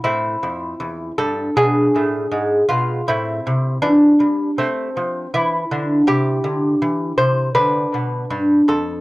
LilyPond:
<<
  \new Staff \with { instrumentName = "Lute" } { \time 4/4 \key a \minor \tempo 4 = 80 << { e'4. a'8 gis'4. eis'8 | e'4 d'4 c'4 e'4 | \key c \major g'4. c''8 b'4. a'8 | } \\ { c'2 d'2 | c'1 | e'2 d'2 | } >> }
  \new Staff \with { instrumentName = "Lute" } { \clef bass \time 4/4 \key a \minor a,8 f,8 e,8 g,8 b,8 a,8 gis,8 b,8 | a,8 c8 e8 g8 a8 f8 e8 d8 | \key c \major c8 d8 e8 c8 d8 b,8 g,8 f,8 | }
>>